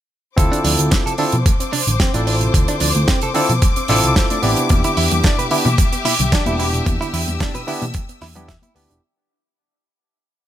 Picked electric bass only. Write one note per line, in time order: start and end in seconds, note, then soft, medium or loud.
0.38 0.48 D2 loud
0.65 0.75 D2 medium
0.79 0.88 D2 medium
1.33 1.42 B2 medium
1.87 1.96 A1 medium
2.14 2.48 A1 medium
2.54 2.64 D2 loud
2.81 2.91 D2 medium
2.95 3.04 D2 medium
3.49 3.58 B2 medium
3.89 3.99 A1 loud
4.04 4.12 C2 medium
4.43 4.53 A1 loud
4.70 4.80 E2 loud
4.97 5.07 E2 medium
5.11 5.20 E2 medium
5.66 5.75 B2 medium
6.20 6.29 B1 medium
6.47 6.80 E1 loud
6.87 6.97 E2 loud
7.13 7.24 E2 medium
7.28 7.37 E2 medium
7.82 7.91 B2 medium
8.22 8.56 E2 medium
8.75 8.86 D2 loud
8.90 8.99 E1 medium